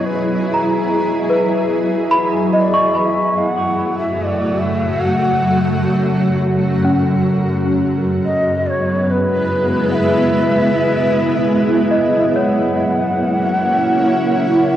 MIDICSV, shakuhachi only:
0, 0, Header, 1, 2, 480
1, 0, Start_track
1, 0, Tempo, 819672
1, 32, Time_signature, 3, 2, 24, 8
1, 8647, End_track
2, 0, Start_track
2, 0, Title_t, "Shakuhachi"
2, 0, Program_c, 0, 77
2, 35, Note_on_c, 0, 71, 83
2, 512, Note_off_c, 0, 71, 0
2, 1512, Note_on_c, 0, 74, 81
2, 1748, Note_on_c, 0, 76, 82
2, 1757, Note_off_c, 0, 74, 0
2, 1980, Note_on_c, 0, 78, 94
2, 1989, Note_off_c, 0, 76, 0
2, 2329, Note_off_c, 0, 78, 0
2, 2333, Note_on_c, 0, 76, 77
2, 2467, Note_on_c, 0, 75, 73
2, 2475, Note_off_c, 0, 76, 0
2, 2487, Note_on_c, 0, 74, 79
2, 2493, Note_off_c, 0, 75, 0
2, 2692, Note_on_c, 0, 76, 82
2, 2701, Note_off_c, 0, 74, 0
2, 2938, Note_on_c, 0, 78, 94
2, 2947, Note_off_c, 0, 76, 0
2, 3405, Note_off_c, 0, 78, 0
2, 4833, Note_on_c, 0, 75, 83
2, 5075, Note_on_c, 0, 74, 72
2, 5083, Note_off_c, 0, 75, 0
2, 5097, Note_on_c, 0, 73, 78
2, 5103, Note_off_c, 0, 74, 0
2, 5313, Note_off_c, 0, 73, 0
2, 5313, Note_on_c, 0, 73, 78
2, 5335, Note_on_c, 0, 71, 84
2, 5341, Note_off_c, 0, 73, 0
2, 5801, Note_on_c, 0, 78, 92
2, 5810, Note_off_c, 0, 71, 0
2, 5825, Note_on_c, 0, 76, 100
2, 5831, Note_off_c, 0, 78, 0
2, 7007, Note_off_c, 0, 76, 0
2, 7236, Note_on_c, 0, 78, 84
2, 8647, Note_off_c, 0, 78, 0
2, 8647, End_track
0, 0, End_of_file